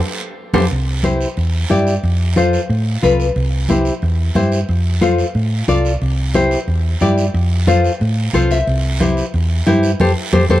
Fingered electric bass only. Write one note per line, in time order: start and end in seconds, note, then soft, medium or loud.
0.54 0.67 F2 loud
0.71 1.24 C2 medium
1.37 1.64 E2 medium
1.70 1.97 G2 medium
2.03 2.56 F2 medium
2.69 2.96 A2 medium
3.03 3.29 C2 medium
3.36 3.89 C2 medium
4.03 4.29 E2 medium
4.35 4.62 G2 medium
4.69 5.22 F2 medium
5.35 5.62 A2 medium
5.68 5.95 C2 medium
6.02 6.55 C2 medium
6.68 6.94 E2 medium
7.02 7.28 G2 medium
7.34 7.87 F2 medium
8.01 8.28 A2 medium
8.34 8.61 C2 medium
8.67 9.21 C2 medium
9.34 9.61 E2 medium
9.67 9.93 G2 medium
10.00 10.13 F2 medium
10.33 10.46 F2 medium
10.50 10.60 F2 medium